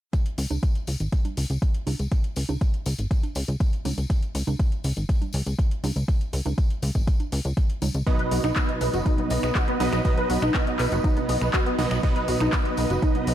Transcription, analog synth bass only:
0.38 0.46 C#2 medium
0.50 0.59 C#2 medium
0.88 0.96 C#2 medium
1.00 1.08 G#1 medium
1.37 1.46 C#2 medium
1.50 1.58 C#2 medium
1.87 1.95 C#2 medium
1.99 2.08 C#2 medium
2.36 2.45 C#2 medium
2.49 2.57 C#2 medium
2.86 2.94 C#2 medium
2.99 3.07 G#1 medium
3.36 3.44 C#2 loud
3.48 3.56 C#2 medium
3.85 3.93 C#2 medium
3.97 4.06 C#2 medium
4.35 4.43 C#2 medium
4.47 4.55 C#2 medium
4.84 4.93 C#2 medium
4.97 5.05 G#1 medium
5.34 5.42 C#2 loud
5.46 5.55 C#2 medium
5.83 5.92 C#2 medium
5.96 6.04 C#2 medium
6.33 6.41 C#2 medium
6.46 6.54 C#2 medium
6.83 6.91 C#2 medium
6.95 7.03 G#1 medium
7.32 7.41 C#2 medium
7.45 7.53 C#2 medium
7.82 7.90 C#2 medium
7.94 8.03 C#2 medium
8.31 8.40 B1 medium
8.44 8.52 B1 medium
8.81 8.89 B1 medium
8.93 9.02 F#1 medium
9.30 9.39 B1 medium
9.43 9.51 B1 medium
9.80 9.88 B1 medium
9.93 10.01 B1 medium
10.30 10.38 B1 loud
10.42 10.50 B1 medium
10.79 10.88 B1 medium
10.92 11.00 F#1 medium
11.29 11.37 B1 medium
11.41 11.50 B1 medium
11.78 11.87 B1 medium
11.91 11.99 B1 medium
12.28 12.36 B1 medium
12.40 12.49 B1 medium
12.78 12.86 B1 medium
12.90 12.98 F#1 medium
13.27 13.34 B1 medium

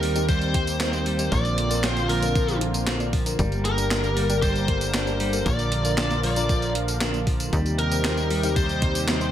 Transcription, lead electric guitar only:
0.00 0.25 A#4 medium
0.29 1.35 C5 loud
1.32 1.91 D5 loud
1.91 2.12 C5 loud
2.09 2.58 A#4 medium
3.65 4.39 A#4 medium
4.43 5.49 C5 loud
5.46 6.20 D5 loud
6.24 6.72 D5 loud
7.79 8.56 A#4 medium
8.56 9.31 C5 loud

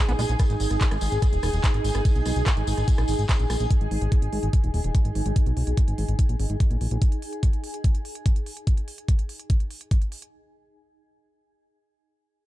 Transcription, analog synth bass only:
0.09 0.15 A#1 medium
0.19 0.25 A#1 loud
0.29 0.36 A#1 medium
0.50 0.56 G#1 medium
0.60 0.67 G#1 loud
0.71 0.77 G#1 medium
0.91 0.98 G#1 medium
1.02 1.08 G#1 loud
1.12 1.18 G#1 medium
1.33 1.39 D#1 medium
1.43 1.49 D#1 loud
1.53 1.60 D#1 medium
1.74 1.80 G#1 medium
1.84 1.91 G#1 loud
1.95 2.01 G#1 medium
2.15 2.22 B1 medium
2.26 2.32 B1 loud
2.36 2.42 B1 medium
2.57 2.63 G#1 medium
2.67 2.73 G#1 loud
2.77 2.84 G#1 medium
2.98 3.04 A#1 medium
3.08 3.15 G#1 loud
3.19 3.25 G#1 medium
3.40 3.46 A#1 medium
3.50 3.56 A#1 medium
3.60 3.67 A#1 medium
3.81 3.87 G#1 medium
3.91 3.98 G#1 loud
4.02 4.08 G#1 medium
4.22 4.29 G#1 medium
4.33 4.39 G#1 loud
4.43 4.49 G#1 medium
4.64 4.70 D#1 medium
4.74 4.80 D#1 medium
4.84 4.91 D#1 loud
5.05 5.11 G#1 medium
5.15 5.22 G#1 loud
5.26 5.32 G#1 medium
5.46 5.53 B1 medium
5.57 5.63 B1 loud
5.67 5.73 B1 medium
5.88 5.94 G#1 medium
5.98 6.04 G#1 loud
6.08 6.15 G#1 loud
6.29 6.36 A#1 medium
6.40 6.46 G#1 loud
6.50 6.56 G#1 medium
6.71 6.77 A#1 medium
6.81 6.87 A#1 medium
6.91 6.98 A#1 loud

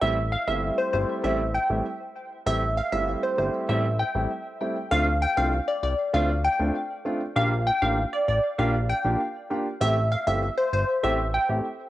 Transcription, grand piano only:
0.01 0.16 G3 medium
0.01 0.16 A3 medium
0.01 0.16 C4 medium
0.01 0.16 E4 loud
0.47 0.90 G3 medium
0.47 0.90 A3 medium
0.47 0.90 C4 medium
0.47 0.90 E4 medium
0.93 1.21 G3 medium
0.93 1.22 A3 medium
0.93 1.22 C4 medium
0.93 1.22 E4 medium
1.24 1.38 G3 loud
1.24 1.39 A3 medium
1.24 1.39 C4 medium
1.24 1.39 E4 loud
1.70 1.84 G3 medium
1.70 1.85 A3 medium
1.70 1.85 C4 medium
1.70 1.85 E4 medium
2.46 2.61 G3 medium
2.46 2.61 A3 medium
2.46 2.61 C4 medium
2.46 2.61 E4 loud
2.92 3.35 G3 medium
2.92 3.35 A3 medium
2.92 3.35 C4 medium
2.92 3.35 E4 medium
3.38 3.66 G3 medium
3.38 3.66 A3 medium
3.38 3.67 C4 medium
3.38 3.67 E4 medium
3.69 3.83 G3 loud
3.69 3.84 A3 medium
3.69 3.84 C4 medium
3.69 3.84 E4 loud
4.15 4.29 G3 medium
4.15 4.29 A3 medium
4.15 4.30 C4 medium
4.15 4.30 E4 medium
4.61 4.75 G3 medium
4.61 4.75 A3 medium
4.61 4.75 C4 medium
4.61 4.76 E4 medium
4.91 5.06 A3 medium
4.91 5.06 C4 medium
4.91 5.06 D4 medium
4.91 5.06 F4 loud
5.37 5.52 A3 medium
5.37 5.52 C4 medium
5.37 5.52 D4 medium
5.37 5.52 F4 medium
6.13 6.28 A3 loud
6.13 6.28 C4 medium
6.13 6.28 D4 medium
6.13 6.29 F4 loud
6.59 6.74 A3 medium
6.59 6.74 C4 medium
6.59 6.74 D4 medium
6.59 6.74 F4 medium
7.05 7.20 A3 medium
7.05 7.20 C4 medium
7.05 7.20 D4 medium
7.05 7.20 F4 medium
7.36 7.51 A#3 loud
7.36 7.51 D4 medium
7.36 7.51 F4 medium
7.36 7.51 G4 loud
7.82 7.97 A#3 medium
7.82 7.97 D4 medium
7.82 7.97 F4 medium
7.82 7.97 G4 medium
8.58 8.73 A#3 loud
8.58 8.73 D4 medium
8.58 8.73 F4 medium
8.58 8.73 G4 loud
9.04 9.19 A#3 medium
9.04 9.19 D4 medium
9.04 9.19 F4 medium
9.04 9.19 G4 medium
9.50 9.65 A#3 medium
9.50 9.65 D4 medium
9.50 9.65 F4 medium
9.50 9.65 G4 medium
9.81 9.96 A3 medium
9.81 9.96 C4 medium
9.81 9.96 E4 medium
9.81 9.96 G4 loud
10.27 10.41 A3 medium
10.27 10.42 C4 medium
10.27 10.42 E4 medium
10.27 10.42 G4 medium
11.03 11.18 A3 loud
11.03 11.18 C4 medium
11.03 11.18 E4 medium
11.03 11.18 G4 loud
11.49 11.64 A3 medium
11.49 11.64 C4 medium
11.49 11.64 E4 medium
11.49 11.64 G4 medium

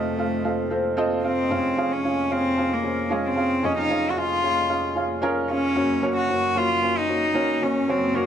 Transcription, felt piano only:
0.00 1.47 F1 soft
0.00 1.47 F2 soft
0.00 0.18 C4 medium
0.00 0.18 F4 medium
0.00 0.19 A4 medium
0.00 0.71 C5 medium
0.00 0.98 D#5 medium
0.00 0.19 F5 medium
0.18 0.42 C4 medium
0.18 0.43 F4 medium
0.18 0.43 A4 medium
0.18 0.43 F5 medium
0.44 0.69 C4 medium
0.44 0.69 F4 medium
0.44 0.69 A4 medium
0.44 0.70 F5 medium
0.70 0.95 C4 medium
0.70 0.96 F4 medium
0.70 0.96 A4 medium
0.70 0.97 C5 medium
0.97 1.22 C4 loud
0.97 1.22 F4 medium
0.97 1.23 A4 medium
0.97 1.23 D#5 loud
1.24 1.49 C4 medium
1.24 1.49 F4 medium
1.24 1.50 A4 medium
1.24 1.50 F5 medium
1.50 3.59 F1 medium
1.50 3.59 F2 medium
1.50 1.75 C#4 medium
1.50 1.76 F4 medium
1.50 1.76 G#4 medium
1.50 1.76 F5 medium
1.77 2.02 C#4 medium
1.77 2.03 F4 medium
1.77 2.03 G#4 medium
1.77 2.03 F5 medium
2.04 2.28 C#4 medium
2.04 2.29 F4 soft
2.04 2.29 G#4 medium
2.04 2.29 F5 medium
2.30 2.56 C#4 medium
2.30 2.56 F4 medium
2.30 2.56 G#4 medium
2.30 2.56 F5 medium
2.57 2.82 C#4 medium
2.57 2.82 F4 medium
2.57 2.82 G#4 medium
2.57 2.83 F5 medium
2.83 3.08 C#4 medium
2.83 3.09 F4 soft
2.83 3.09 G#4 medium
2.83 3.09 C5 medium
3.09 3.34 C#4 medium
3.09 3.35 F4 medium
3.09 3.35 G#4 medium
3.09 3.35 F5 medium
3.36 3.61 C#4 medium
3.36 3.62 F4 soft
3.36 3.62 G#4 medium
3.36 3.62 F5 medium
3.63 5.72 F1 soft
3.63 5.72 F2 soft
3.63 3.88 C#4 medium
3.63 3.89 F4 medium
3.63 3.89 G#4 medium
3.63 3.89 D#5 medium
3.90 4.15 C#4 medium
3.90 4.15 F4 medium
3.90 4.15 G#4 medium
3.90 4.16 F5 medium
4.17 4.41 C#4 medium
4.17 4.42 F4 medium
4.17 4.42 G#4 medium
4.17 4.42 F5 medium
4.43 4.67 C#4 medium
4.43 4.68 F4 medium
4.43 4.68 G#4 medium
4.43 4.68 F5 medium
4.69 4.94 C#4 medium
4.69 4.94 F4 medium
4.69 4.94 G#4 medium
4.69 4.95 F5 medium
4.95 5.20 C#4 medium
4.95 5.21 F4 medium
4.95 5.21 G#4 medium
4.95 5.22 F5 medium
5.22 5.48 C#4 loud
5.22 5.48 F4 medium
5.22 5.48 G#4 medium
5.22 5.48 A#4 loud
5.49 5.74 C#4 medium
5.49 5.75 F4 medium
5.49 5.75 G#4 medium
5.49 5.75 F5 medium
5.75 7.84 F#1 medium
5.75 7.85 F#2 medium
5.75 6.00 A#3 medium
5.75 6.01 C#4 medium
5.75 6.01 F#4 medium
5.75 6.01 C#5 medium
6.02 6.27 A#3 medium
6.02 6.28 C#4 medium
6.02 6.28 F#4 medium
6.02 6.28 C#5 medium
6.29 6.53 A#3 medium
6.29 6.54 C#4 soft
6.29 6.54 F#4 medium
6.29 6.54 C#5 medium
6.55 6.80 A#3 medium
6.55 6.81 C#4 medium
6.55 6.81 F#4 medium
6.55 6.81 C#5 medium
6.82 7.07 A#3 medium
6.82 7.07 C#4 medium
6.82 7.07 F#4 medium
6.82 7.08 C#5 medium
7.08 7.32 A#3 medium
7.08 7.33 C#4 soft
7.08 7.33 F#4 soft
7.08 7.34 C#5 medium
7.34 7.59 A#3 medium
7.34 7.60 C#4 medium
7.34 7.60 F#4 medium
7.34 7.61 C#5 medium
7.61 7.87 A#3 medium
7.61 7.87 C#4 medium
7.61 7.87 F#4 medium
7.61 7.87 C#5 medium
7.88 8.26 F#1 soft
7.88 8.26 F#2 soft
7.88 8.13 A#3 medium
7.88 8.13 C#4 medium
7.88 8.14 F#4 medium
7.88 8.14 C#5 medium
8.14 8.26 A#3 medium
8.14 8.26 C#4 medium
8.14 8.26 F#4 medium
8.14 8.26 C#5 medium

